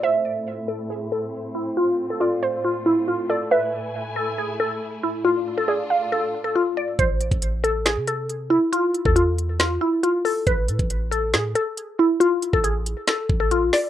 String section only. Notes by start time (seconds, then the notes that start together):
0.03 A2 A3 C4 E4
1.77 A2 A3 F4
3.51 E4 G#5
5.25 D4 F4